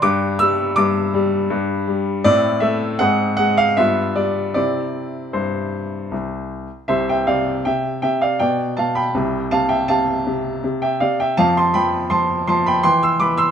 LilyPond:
<<
  \new Staff \with { instrumentName = "Grand piano" } { \time 3/4 \key c \major \tempo 4 = 81 << { d'''8 e'''8 d'''4. r8 | d''8 e''8 ges''8 ges''16 f''16 e''8 d''8 | d''4 c''4. r8 | <c'' e''>16 <e'' g''>16 <d'' f''>8 <e'' g''>8 <e'' g''>16 <d'' f''>16 <d'' g''>8 <f'' a''>16 <g'' b''>16~ |
<g'' b''>8 <f'' a''>16 <e'' g''>16 <f'' a''>4~ <f'' a''>16 <e'' g''>16 <d'' f''>16 <e'' g''>16 | <f'' a''>16 <a'' c'''>16 <g'' b''>8 <a'' c'''>8 <a'' c'''>16 <g'' b''>16 <g'' c'''>16 <c''' e'''>16 <b'' d'''>16 <c''' e'''>16 | } \\ { <d' g'>2. | <c' e'>4 <c' aes'>4 <b f'>4 | r2. | r2. |
r2. | r2. | } >> }
  \new Staff \with { instrumentName = "Grand piano" } { \clef bass \time 3/4 \key c \major g,8 g8 g,8 g8 g,8 g8 | a,8 a8 aes,8 aes8 g,8 g8 | <c c' e'>4 g,4 c,4 | <c, c>8 c8 c8 c8 b,8 b,8 |
<c, c>8 c8 c8 c8 c8 c8 | <f, f>8 f8 f8 f8 e8 e8 | }
>>